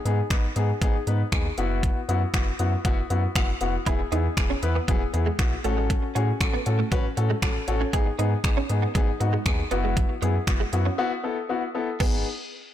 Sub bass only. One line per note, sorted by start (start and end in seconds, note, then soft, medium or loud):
0.05 0.22 G#2 loud
0.30 0.47 G#1 medium
0.56 0.73 G#2 loud
0.82 0.98 G#1 loud
1.07 1.23 G#2 loud
1.32 1.49 D#2 medium
1.58 1.91 F#1 loud
2.09 2.25 F#2 loud
2.34 2.50 F#1 loud
2.60 2.76 F#2 medium
2.85 3.01 F#1 loud
3.10 3.27 F#2 medium
3.35 3.52 F#1 medium
3.61 3.78 F1 medium
3.87 4.03 E1 loud
4.12 4.28 E2 loud
4.37 4.54 E1 loud
4.63 4.79 E2 loud
4.88 5.05 E1 loud
5.14 5.30 E2 loud
5.39 5.56 B1 medium
5.65 5.98 A1 medium
6.16 6.32 A2 loud
6.41 6.57 A1 loud
6.66 6.83 A2 loud
6.92 7.08 A1 loud
7.17 7.34 A2 loud
7.42 7.59 A1 loud
7.68 7.84 A1 medium
7.93 8.10 G#1 loud
8.19 8.35 G#2 loud
8.44 8.61 G#1 medium
8.70 8.86 G#2 loud
8.95 9.12 G#1 loud
9.20 9.37 G#2 loud
9.46 9.62 D#2 loud
9.71 10.04 F#1 loud
10.22 10.39 F#2 loud
10.47 10.64 F#1 medium
10.73 10.89 F#2 loud
12.00 12.24 G#1 loud